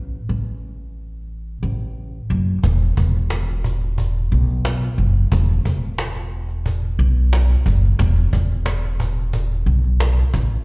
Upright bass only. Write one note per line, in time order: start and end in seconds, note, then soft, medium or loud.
0.00 0.17 A1 medium
0.29 1.59 A1 medium
1.63 2.18 A1 medium
2.30 2.57 F#1 medium
2.64 2.91 E1 medium
2.97 4.27 E1 medium
4.32 4.86 B1 medium
4.98 5.25 F#1 medium
5.32 5.59 E1 medium
5.66 6.95 E1 medium
6.99 7.54 B1 medium
7.66 7.93 F#1 medium
7.99 8.27 E1 loud
8.33 9.63 E1 medium
9.66 10.21 B1 medium
10.34 10.65 A1 medium